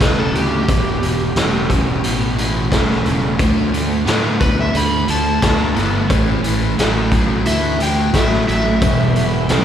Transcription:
0.00 0.32 E1 medium
0.00 0.31 E2 medium
0.00 0.31 C#3 medium
0.00 0.18 B4 medium
0.00 kick medium
0.00 snare loud
0.00 closed hi-hat medium
0.19 0.35 A4 medium
0.33 0.66 D2 medium
0.33 0.64 E2 medium
0.33 0.65 C#3 medium
0.33 2.34 G4 medium
0.33 closed hi-hat medium
0.67 1.00 E1 medium
0.67 0.98 E2 medium
0.67 0.98 B2 medium
0.67 kick loud
0.67 closed hi-hat medium
1.02 1.34 E1 medium
1.02 1.33 E2 medium
1.02 1.33 B2 medium
1.02 closed hi-hat medium
1.36 2.00 E1 medium
1.36 1.67 E2 medium
1.36 1.67 C#3 medium
1.36 snare loud
1.36 closed hi-hat medium
1.70 2.00 E2 medium
1.70 2.00 C#3 medium
1.70 kick medium
1.70 closed hi-hat medium
2.02 2.68 A1 medium
2.02 2.33 E2 medium
2.02 2.34 B2 medium
2.02 closed hi-hat medium
2.35 2.67 E2 medium
2.35 2.67 B2 medium
2.35 closed hi-hat medium
2.69 3.04 E1 medium
2.69 3.01 E2 medium
2.69 3.01 C#3 medium
2.69 kick medium
2.69 closed hi-hat medium
2.74 snare loud
2.91 snare soft
3.03 3.37 E1 medium
3.03 3.35 E2 medium
3.03 3.35 C#3 medium
3.03 closed hi-hat medium
3.37 4.03 D2 medium
3.37 3.69 D3 medium
3.37 3.69 A3 medium
3.37 kick loud
3.37 closed hi-hat medium
3.71 4.03 D3 medium
3.71 4.03 A3 medium
3.71 closed hi-hat medium
4.05 4.38 A2 medium
4.05 4.37 D3 medium
4.05 4.37 B3 medium
4.05 snare loud
4.05 closed hi-hat medium
4.39 4.72 D2 medium
4.39 4.71 D3 medium
4.39 4.71 B3 medium
4.39 4.58 B4 medium
4.39 kick medium
4.39 closed hi-hat medium
4.61 4.76 E5 medium
4.73 5.06 D2 medium
4.73 5.05 D3 medium
4.73 5.05 A3 loud
4.73 5.09 B5 medium
4.73 closed hi-hat medium
5.07 5.40 D2 medium
5.07 5.38 D3 medium
5.07 5.39 A3 medium
5.07 7.09 A5 loud
5.07 closed hi-hat medium
5.40 5.74 D2 medium
5.40 5.72 D3 medium
5.40 5.72 B3 medium
5.40 kick medium
5.40 snare loud
5.40 closed hi-hat medium
5.74 6.08 G1 medium
5.74 6.06 D3 medium
5.74 6.06 B3 medium
5.74 snare soft
5.74 closed hi-hat medium
6.09 6.42 A1 medium
6.09 6.40 A2 medium
6.09 6.40 E3 medium
6.09 kick loud
6.09 closed hi-hat medium
6.43 6.76 A1 medium
6.43 6.75 A2 medium
6.43 6.75 E3 medium
6.43 closed hi-hat medium
6.78 7.42 A1 medium
6.78 7.09 A2 medium
6.78 7.09 F#3 medium
6.78 snare loud
6.78 closed hi-hat loud
7.12 7.43 A2 medium
7.12 7.43 F#3 medium
7.12 kick medium
7.12 closed hi-hat medium
7.45 8.09 D2 medium
7.45 7.76 A2 medium
7.45 7.76 E3 medium
7.45 7.80 E5 medium
7.45 closed hi-hat medium
7.79 8.10 A2 medium
7.79 8.11 E3 medium
7.79 8.14 G5 medium
7.79 closed hi-hat medium
8.13 8.46 A1 medium
8.13 8.44 A2 medium
8.13 8.44 F#3 medium
8.13 8.47 E5 medium
8.13 kick medium
8.13 snare loud
8.13 closed hi-hat medium
8.33 snare soft
8.47 8.80 A1 medium
8.47 8.78 A2 medium
8.47 8.79 F#3 medium
8.47 9.65 E5 medium
8.47 closed hi-hat medium
8.80 9.46 E1 medium
8.80 9.15 E2 medium
8.80 9.13 E2 medium
8.80 9.16 B2 medium
8.80 9.13 B2 medium
8.80 9.14 E3 medium
8.80 9.16 G3 medium
8.80 9.16 B3 medium
8.80 9.65 E4 medium
8.80 9.16 G4 medium
8.80 9.65 B4 medium
8.80 9.65 G5 medium
8.80 kick loud
8.80 closed hi-hat medium
9.16 9.46 E2 medium
9.16 9.47 B2 medium
9.16 9.33 E3 medium
9.16 9.32 G3 medium
9.16 9.32 B3 medium
9.16 9.31 G4 medium
9.16 closed hi-hat medium
9.32 9.48 E3 soft
9.32 9.49 G3 soft
9.32 9.49 B3 medium
9.32 9.49 G4 medium
9.48 9.65 B1 medium
9.48 9.65 E2 medium
9.48 9.65 B2 medium
9.48 9.65 C#3 medium
9.48 9.65 E3 medium
9.48 9.65 G3 loud
9.48 9.65 B3 medium
9.48 9.65 G4 medium
9.48 snare loud
9.48 closed hi-hat medium

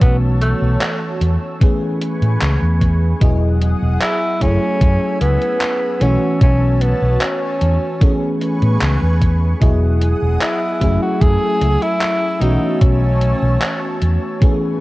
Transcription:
0.00 0.52 B1 medium
0.00 1.53 E3 medium
0.00 1.53 A3 medium
0.00 1.54 B3 medium
0.00 0.17 B3 loud
0.00 1.54 C#4 medium
0.00 1.54 F#4 medium
0.00 1.60 C#5 medium
0.00 1.60 A5 medium
0.00 1.58 E6 medium
0.00 kick loud
0.00 closed hi-hat medium
0.41 1.17 A3 medium
0.41 closed hi-hat medium
0.62 0.76 B1 medium
0.81 clap loud
0.81 closed hi-hat medium
1.21 1.36 E2 medium
1.21 closed hi-hat medium
1.60 3.13 E3 medium
1.60 3.13 A3 medium
1.60 3.14 B3 medium
1.60 3.14 C#4 medium
1.60 3.15 G#4 medium
1.60 3.20 B4 medium
1.60 3.20 G#5 medium
1.60 3.20 C#6 medium
1.60 kick loud
1.60 closed hi-hat medium
2.01 closed hi-hat medium
2.22 2.36 A2 medium
2.22 closed hi-hat soft
2.41 2.56 C#2 medium
2.41 clap loud
2.41 closed hi-hat medium
2.62 3.12 E2 medium
2.81 kick medium
2.81 closed hi-hat medium
3.20 3.72 E1 medium
3.20 4.33 F#3 medium
3.20 4.33 B3 medium
3.20 4.34 E4 medium
3.20 4.40 G#4 medium
3.20 4.35 G#4 medium
3.20 4.34 D#5 medium
3.20 4.40 F#5 medium
3.20 4.40 D#6 medium
3.20 kick loud
3.20 closed hi-hat medium
3.61 closed hi-hat medium
3.82 3.96 E1 medium
4.01 4.43 E4 loud
4.01 clap loud
4.01 closed hi-hat medium
4.40 4.56 F#1 medium
4.40 5.93 F#3 medium
4.40 5.93 A3 medium
4.40 6.00 A3 medium
4.40 5.94 C#4 medium
4.40 5.21 C#4 loud
4.40 5.94 E4 medium
4.40 5.94 G#4 medium
4.40 6.00 G#5 medium
4.40 7.98 E6 medium
4.40 kick medium
4.40 closed hi-hat medium
4.81 4.96 F#2 loud
4.81 kick loud
4.81 closed hi-hat medium
5.21 5.36 C#2 medium
5.21 6.03 B3 loud
5.21 closed hi-hat medium
5.42 closed hi-hat soft
5.61 clap loud
5.61 closed hi-hat medium
6.00 6.16 B1 medium
6.00 7.93 E3 medium
6.00 7.93 A3 medium
6.00 7.94 B3 medium
6.00 6.41 C#4 medium
6.00 7.94 C#4 medium
6.00 7.94 F#4 loud
6.00 7.99 C#5 medium
6.00 7.99 A5 medium
6.00 closed hi-hat medium
6.41 6.92 B1 medium
6.41 6.83 C#4 loud
6.41 kick loud
6.41 closed hi-hat medium
6.81 7.23 B3 medium
6.81 closed hi-hat medium
7.02 7.16 B1 medium
7.21 8.41 C#4 medium
7.21 clap loud
7.21 closed hi-hat medium
7.61 7.76 E2 medium
7.61 closed hi-hat medium
8.00 9.53 E3 medium
8.00 9.53 A3 medium
8.00 9.54 B3 medium
8.00 9.54 C#4 medium
8.00 9.55 G#4 medium
8.00 9.60 B4 medium
8.00 9.60 G#5 medium
8.00 9.60 C#6 medium
8.00 kick loud
8.00 closed hi-hat medium
8.41 closed hi-hat medium
8.62 8.76 A2 medium
8.62 closed hi-hat soft
8.81 8.96 C#2 medium
8.81 clap loud
8.81 closed hi-hat medium
9.02 9.52 E2 medium
9.21 kick medium
9.21 closed hi-hat medium
9.60 10.12 E1 medium
9.60 10.73 F#3 medium
9.60 10.73 B3 medium
9.60 10.74 E4 medium
9.60 10.80 G#4 medium
9.60 10.74 G#4 medium
9.60 10.74 D#5 medium
9.60 10.80 F#5 medium
9.60 10.80 D#6 medium
9.60 kick loud
9.60 closed hi-hat medium
10.01 closed hi-hat medium
10.22 10.36 E1 medium
10.41 10.98 E4 loud
10.41 clap loud
10.41 closed hi-hat medium
10.80 10.96 F#1 medium
10.80 12.33 F#3 medium
10.80 12.34 A3 medium
10.80 12.40 A3 medium
10.80 12.34 C#4 medium
10.80 12.34 E4 medium
10.80 12.35 G#4 medium
10.80 12.40 G#5 medium
10.80 14.38 E6 medium
10.80 kick medium
10.80 closed hi-hat medium
11.02 11.23 F#4 loud
11.21 11.36 F#2 loud
11.21 11.84 G#4 loud
11.21 kick loud
11.21 closed hi-hat medium
11.61 11.76 C#2 medium
11.61 closed hi-hat medium
11.82 12.43 E4 loud
11.82 closed hi-hat soft
12.01 clap loud
12.01 closed hi-hat medium
12.40 12.56 B1 medium
12.40 14.33 E3 medium
12.40 14.33 A3 medium
12.40 14.34 B3 medium
12.40 14.34 C#4 medium
12.40 12.81 D#4 medium
12.40 14.34 F#4 loud
12.40 14.39 C#5 medium
12.40 14.39 A5 medium
12.40 closed hi-hat medium
12.81 13.32 B1 loud
12.81 13.98 C#4 medium
12.81 kick loud
12.81 closed hi-hat medium
13.21 closed hi-hat medium
13.42 13.56 B1 medium
13.61 clap loud
13.61 closed hi-hat medium
14.01 14.16 E2 medium
14.01 closed hi-hat medium
14.40 14.80 E3 medium
14.40 14.80 A3 medium
14.40 14.80 B3 medium
14.40 14.80 C#4 medium
14.40 14.80 G#4 medium
14.40 14.80 B4 medium
14.40 14.80 G#5 medium
14.40 14.80 C#6 medium
14.40 kick loud
14.40 closed hi-hat medium

